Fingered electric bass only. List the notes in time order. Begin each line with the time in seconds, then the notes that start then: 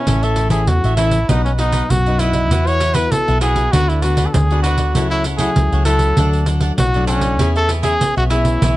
0.07 A1
0.68 E2
0.84 A1
1.29 B1
1.90 B1
2.51 E2
3.12 B1
3.28 B1
3.73 D2
4.34 D2
4.95 C#2
5.57 C#2
5.72 C#2
6.18 D2
6.78 B1
7.40 E2
8.01 B1
8.17 B1
8.62 B1